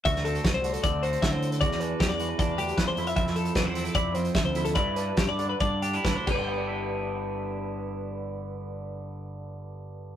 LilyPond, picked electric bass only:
\new Staff \with { instrumentName = "Picked electric bass" } { \clef bass \time 4/4 \key g \major \tempo 4 = 146 d,4 c,4 d,4 d4 | e,4 e,4 e,4 e,16 r16 f,8 | f,4 e,4 f,4 d,4 | g,4 g,4 g,4 g,16 r16 g,,8~ |
g,,1~ | g,,1 | }